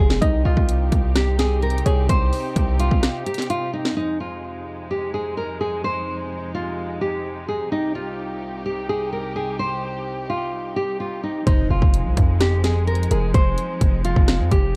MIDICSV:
0, 0, Header, 1, 7, 480
1, 0, Start_track
1, 0, Key_signature, -4, "minor"
1, 0, Tempo, 468750
1, 223, Time_signature, 4, 2, 24, 8
1, 15115, End_track
2, 0, Start_track
2, 0, Title_t, "Synth pluck"
2, 0, Program_c, 0, 84
2, 220, Note_on_c, 0, 75, 113
2, 1861, Note_off_c, 0, 75, 0
2, 1903, Note_on_c, 0, 73, 88
2, 2131, Note_off_c, 0, 73, 0
2, 2141, Note_on_c, 0, 72, 101
2, 4021, Note_off_c, 0, 72, 0
2, 11742, Note_on_c, 0, 72, 108
2, 13382, Note_off_c, 0, 72, 0
2, 13427, Note_on_c, 0, 70, 78
2, 13653, Note_off_c, 0, 70, 0
2, 13666, Note_on_c, 0, 72, 92
2, 15064, Note_off_c, 0, 72, 0
2, 15115, End_track
3, 0, Start_track
3, 0, Title_t, "Nylon-string guitar"
3, 0, Program_c, 1, 24
3, 0, Note_on_c, 1, 68, 85
3, 190, Note_off_c, 1, 68, 0
3, 223, Note_on_c, 1, 63, 94
3, 429, Note_off_c, 1, 63, 0
3, 462, Note_on_c, 1, 65, 94
3, 1141, Note_off_c, 1, 65, 0
3, 1184, Note_on_c, 1, 67, 88
3, 1389, Note_off_c, 1, 67, 0
3, 1427, Note_on_c, 1, 68, 83
3, 1631, Note_off_c, 1, 68, 0
3, 1665, Note_on_c, 1, 70, 85
3, 1870, Note_off_c, 1, 70, 0
3, 1902, Note_on_c, 1, 68, 91
3, 2108, Note_off_c, 1, 68, 0
3, 2144, Note_on_c, 1, 72, 103
3, 2823, Note_off_c, 1, 72, 0
3, 2865, Note_on_c, 1, 65, 85
3, 3315, Note_off_c, 1, 65, 0
3, 3342, Note_on_c, 1, 67, 84
3, 3548, Note_off_c, 1, 67, 0
3, 3584, Note_on_c, 1, 65, 85
3, 3790, Note_off_c, 1, 65, 0
3, 3824, Note_on_c, 1, 63, 87
3, 4029, Note_off_c, 1, 63, 0
3, 4061, Note_on_c, 1, 63, 98
3, 4268, Note_off_c, 1, 63, 0
3, 4304, Note_on_c, 1, 65, 73
3, 4983, Note_off_c, 1, 65, 0
3, 5024, Note_on_c, 1, 67, 76
3, 5230, Note_off_c, 1, 67, 0
3, 5262, Note_on_c, 1, 68, 78
3, 5468, Note_off_c, 1, 68, 0
3, 5501, Note_on_c, 1, 70, 79
3, 5707, Note_off_c, 1, 70, 0
3, 5741, Note_on_c, 1, 68, 78
3, 5948, Note_off_c, 1, 68, 0
3, 5982, Note_on_c, 1, 72, 97
3, 6662, Note_off_c, 1, 72, 0
3, 6703, Note_on_c, 1, 65, 83
3, 7154, Note_off_c, 1, 65, 0
3, 7181, Note_on_c, 1, 67, 81
3, 7633, Note_off_c, 1, 67, 0
3, 7664, Note_on_c, 1, 68, 80
3, 7870, Note_off_c, 1, 68, 0
3, 7903, Note_on_c, 1, 63, 93
3, 8109, Note_off_c, 1, 63, 0
3, 8141, Note_on_c, 1, 65, 86
3, 8821, Note_off_c, 1, 65, 0
3, 8864, Note_on_c, 1, 67, 82
3, 9069, Note_off_c, 1, 67, 0
3, 9106, Note_on_c, 1, 68, 79
3, 9311, Note_off_c, 1, 68, 0
3, 9345, Note_on_c, 1, 70, 82
3, 9550, Note_off_c, 1, 70, 0
3, 9582, Note_on_c, 1, 68, 88
3, 9789, Note_off_c, 1, 68, 0
3, 9824, Note_on_c, 1, 72, 98
3, 10502, Note_off_c, 1, 72, 0
3, 10543, Note_on_c, 1, 65, 79
3, 10994, Note_off_c, 1, 65, 0
3, 11022, Note_on_c, 1, 67, 82
3, 11228, Note_off_c, 1, 67, 0
3, 11265, Note_on_c, 1, 65, 83
3, 11470, Note_off_c, 1, 65, 0
3, 11504, Note_on_c, 1, 63, 80
3, 11710, Note_off_c, 1, 63, 0
3, 11742, Note_on_c, 1, 63, 102
3, 11948, Note_off_c, 1, 63, 0
3, 11985, Note_on_c, 1, 65, 78
3, 12663, Note_off_c, 1, 65, 0
3, 12705, Note_on_c, 1, 67, 79
3, 12910, Note_off_c, 1, 67, 0
3, 12943, Note_on_c, 1, 68, 83
3, 13149, Note_off_c, 1, 68, 0
3, 13181, Note_on_c, 1, 70, 86
3, 13388, Note_off_c, 1, 70, 0
3, 13423, Note_on_c, 1, 68, 82
3, 13629, Note_off_c, 1, 68, 0
3, 13663, Note_on_c, 1, 72, 107
3, 14342, Note_off_c, 1, 72, 0
3, 14383, Note_on_c, 1, 65, 90
3, 14834, Note_off_c, 1, 65, 0
3, 14862, Note_on_c, 1, 67, 89
3, 15115, Note_off_c, 1, 67, 0
3, 15115, End_track
4, 0, Start_track
4, 0, Title_t, "String section"
4, 0, Program_c, 2, 48
4, 0, Note_on_c, 2, 53, 81
4, 0, Note_on_c, 2, 56, 86
4, 0, Note_on_c, 2, 60, 73
4, 0, Note_on_c, 2, 65, 73
4, 185, Note_off_c, 2, 53, 0
4, 185, Note_off_c, 2, 56, 0
4, 185, Note_off_c, 2, 60, 0
4, 204, Note_off_c, 2, 65, 0
4, 223, Note_on_c, 2, 48, 81
4, 223, Note_on_c, 2, 60, 72
4, 223, Note_on_c, 2, 63, 75
4, 223, Note_on_c, 2, 67, 88
4, 4025, Note_off_c, 2, 48, 0
4, 4025, Note_off_c, 2, 60, 0
4, 4025, Note_off_c, 2, 63, 0
4, 4025, Note_off_c, 2, 67, 0
4, 4063, Note_on_c, 2, 41, 74
4, 4063, Note_on_c, 2, 48, 69
4, 4063, Note_on_c, 2, 56, 83
4, 4063, Note_on_c, 2, 63, 69
4, 7865, Note_off_c, 2, 41, 0
4, 7865, Note_off_c, 2, 56, 0
4, 7903, Note_on_c, 2, 36, 75
4, 7903, Note_on_c, 2, 67, 86
4, 11702, Note_off_c, 2, 48, 0
4, 11702, Note_off_c, 2, 63, 0
4, 11705, Note_off_c, 2, 36, 0
4, 11705, Note_off_c, 2, 67, 0
4, 11744, Note_on_c, 2, 53, 79
4, 11744, Note_on_c, 2, 56, 89
4, 11744, Note_on_c, 2, 60, 73
4, 11744, Note_on_c, 2, 63, 73
4, 15115, Note_off_c, 2, 53, 0
4, 15115, Note_off_c, 2, 56, 0
4, 15115, Note_off_c, 2, 60, 0
4, 15115, Note_off_c, 2, 63, 0
4, 15115, End_track
5, 0, Start_track
5, 0, Title_t, "808-style bass"
5, 0, Program_c, 3, 38
5, 0, Note_on_c, 3, 29, 103
5, 214, Note_off_c, 3, 29, 0
5, 224, Note_on_c, 3, 36, 118
5, 454, Note_off_c, 3, 36, 0
5, 463, Note_on_c, 3, 36, 110
5, 578, Note_off_c, 3, 36, 0
5, 583, Note_on_c, 3, 36, 106
5, 929, Note_off_c, 3, 36, 0
5, 942, Note_on_c, 3, 36, 102
5, 1864, Note_off_c, 3, 36, 0
5, 1903, Note_on_c, 3, 36, 106
5, 2134, Note_off_c, 3, 36, 0
5, 2143, Note_on_c, 3, 36, 113
5, 2374, Note_off_c, 3, 36, 0
5, 2622, Note_on_c, 3, 36, 110
5, 2968, Note_off_c, 3, 36, 0
5, 2983, Note_on_c, 3, 36, 103
5, 3098, Note_off_c, 3, 36, 0
5, 11743, Note_on_c, 3, 29, 115
5, 11974, Note_off_c, 3, 29, 0
5, 11983, Note_on_c, 3, 29, 107
5, 12099, Note_off_c, 3, 29, 0
5, 12103, Note_on_c, 3, 29, 109
5, 12344, Note_on_c, 3, 36, 99
5, 12359, Note_off_c, 3, 29, 0
5, 12457, Note_off_c, 3, 36, 0
5, 12463, Note_on_c, 3, 41, 106
5, 13384, Note_off_c, 3, 41, 0
5, 13424, Note_on_c, 3, 29, 107
5, 13654, Note_off_c, 3, 29, 0
5, 13663, Note_on_c, 3, 29, 115
5, 13894, Note_off_c, 3, 29, 0
5, 14142, Note_on_c, 3, 29, 108
5, 14488, Note_off_c, 3, 29, 0
5, 14503, Note_on_c, 3, 29, 109
5, 14744, Note_on_c, 3, 41, 106
5, 14759, Note_off_c, 3, 29, 0
5, 14857, Note_off_c, 3, 41, 0
5, 14863, Note_on_c, 3, 29, 107
5, 15115, Note_off_c, 3, 29, 0
5, 15115, End_track
6, 0, Start_track
6, 0, Title_t, "Impact"
6, 0, Program_c, 4, 103
6, 11743, Note_on_c, 4, 60, 84
6, 13663, Note_off_c, 4, 60, 0
6, 15115, End_track
7, 0, Start_track
7, 0, Title_t, "Drums"
7, 104, Note_on_c, 9, 38, 101
7, 206, Note_off_c, 9, 38, 0
7, 223, Note_on_c, 9, 36, 123
7, 223, Note_on_c, 9, 42, 88
7, 326, Note_off_c, 9, 36, 0
7, 326, Note_off_c, 9, 42, 0
7, 583, Note_on_c, 9, 36, 110
7, 685, Note_off_c, 9, 36, 0
7, 703, Note_on_c, 9, 42, 85
7, 806, Note_off_c, 9, 42, 0
7, 942, Note_on_c, 9, 36, 108
7, 943, Note_on_c, 9, 42, 75
7, 1045, Note_off_c, 9, 36, 0
7, 1046, Note_off_c, 9, 42, 0
7, 1183, Note_on_c, 9, 37, 93
7, 1183, Note_on_c, 9, 38, 117
7, 1183, Note_on_c, 9, 42, 82
7, 1286, Note_off_c, 9, 37, 0
7, 1286, Note_off_c, 9, 38, 0
7, 1286, Note_off_c, 9, 42, 0
7, 1422, Note_on_c, 9, 38, 96
7, 1423, Note_on_c, 9, 42, 81
7, 1525, Note_off_c, 9, 38, 0
7, 1525, Note_off_c, 9, 42, 0
7, 1663, Note_on_c, 9, 42, 40
7, 1743, Note_off_c, 9, 42, 0
7, 1743, Note_on_c, 9, 42, 53
7, 1823, Note_off_c, 9, 42, 0
7, 1823, Note_on_c, 9, 42, 66
7, 1903, Note_off_c, 9, 42, 0
7, 1903, Note_on_c, 9, 42, 92
7, 2006, Note_off_c, 9, 42, 0
7, 2143, Note_on_c, 9, 36, 122
7, 2143, Note_on_c, 9, 42, 89
7, 2245, Note_off_c, 9, 42, 0
7, 2246, Note_off_c, 9, 36, 0
7, 2383, Note_on_c, 9, 46, 83
7, 2485, Note_off_c, 9, 46, 0
7, 2622, Note_on_c, 9, 36, 97
7, 2623, Note_on_c, 9, 42, 80
7, 2725, Note_off_c, 9, 36, 0
7, 2725, Note_off_c, 9, 42, 0
7, 2863, Note_on_c, 9, 42, 81
7, 2965, Note_off_c, 9, 42, 0
7, 2983, Note_on_c, 9, 36, 102
7, 3085, Note_off_c, 9, 36, 0
7, 3103, Note_on_c, 9, 37, 100
7, 3103, Note_on_c, 9, 38, 120
7, 3103, Note_on_c, 9, 42, 81
7, 3205, Note_off_c, 9, 37, 0
7, 3205, Note_off_c, 9, 38, 0
7, 3205, Note_off_c, 9, 42, 0
7, 3343, Note_on_c, 9, 42, 67
7, 3423, Note_off_c, 9, 42, 0
7, 3423, Note_on_c, 9, 42, 68
7, 3464, Note_on_c, 9, 38, 70
7, 3503, Note_off_c, 9, 42, 0
7, 3503, Note_on_c, 9, 42, 72
7, 3566, Note_off_c, 9, 38, 0
7, 3583, Note_off_c, 9, 42, 0
7, 3583, Note_on_c, 9, 42, 64
7, 3686, Note_off_c, 9, 42, 0
7, 3944, Note_on_c, 9, 38, 98
7, 4046, Note_off_c, 9, 38, 0
7, 11743, Note_on_c, 9, 36, 125
7, 11743, Note_on_c, 9, 42, 87
7, 11845, Note_off_c, 9, 42, 0
7, 11846, Note_off_c, 9, 36, 0
7, 12103, Note_on_c, 9, 36, 107
7, 12205, Note_off_c, 9, 36, 0
7, 12223, Note_on_c, 9, 42, 85
7, 12326, Note_off_c, 9, 42, 0
7, 12463, Note_on_c, 9, 36, 109
7, 12463, Note_on_c, 9, 42, 77
7, 12565, Note_off_c, 9, 36, 0
7, 12566, Note_off_c, 9, 42, 0
7, 12703, Note_on_c, 9, 37, 97
7, 12703, Note_on_c, 9, 38, 116
7, 12704, Note_on_c, 9, 42, 82
7, 12806, Note_off_c, 9, 37, 0
7, 12806, Note_off_c, 9, 38, 0
7, 12806, Note_off_c, 9, 42, 0
7, 12942, Note_on_c, 9, 38, 94
7, 12943, Note_on_c, 9, 42, 79
7, 13045, Note_off_c, 9, 38, 0
7, 13046, Note_off_c, 9, 42, 0
7, 13183, Note_on_c, 9, 42, 39
7, 13263, Note_off_c, 9, 42, 0
7, 13263, Note_on_c, 9, 42, 54
7, 13343, Note_off_c, 9, 42, 0
7, 13343, Note_on_c, 9, 42, 68
7, 13423, Note_off_c, 9, 42, 0
7, 13423, Note_on_c, 9, 42, 90
7, 13526, Note_off_c, 9, 42, 0
7, 13663, Note_on_c, 9, 36, 125
7, 13663, Note_on_c, 9, 42, 86
7, 13766, Note_off_c, 9, 36, 0
7, 13766, Note_off_c, 9, 42, 0
7, 13903, Note_on_c, 9, 42, 76
7, 14006, Note_off_c, 9, 42, 0
7, 14143, Note_on_c, 9, 36, 96
7, 14143, Note_on_c, 9, 42, 84
7, 14245, Note_off_c, 9, 36, 0
7, 14246, Note_off_c, 9, 42, 0
7, 14383, Note_on_c, 9, 42, 82
7, 14486, Note_off_c, 9, 42, 0
7, 14503, Note_on_c, 9, 36, 101
7, 14606, Note_off_c, 9, 36, 0
7, 14623, Note_on_c, 9, 37, 95
7, 14623, Note_on_c, 9, 38, 122
7, 14623, Note_on_c, 9, 42, 81
7, 14726, Note_off_c, 9, 37, 0
7, 14726, Note_off_c, 9, 38, 0
7, 14726, Note_off_c, 9, 42, 0
7, 14863, Note_on_c, 9, 36, 104
7, 14863, Note_on_c, 9, 42, 81
7, 14966, Note_off_c, 9, 36, 0
7, 14966, Note_off_c, 9, 42, 0
7, 15115, End_track
0, 0, End_of_file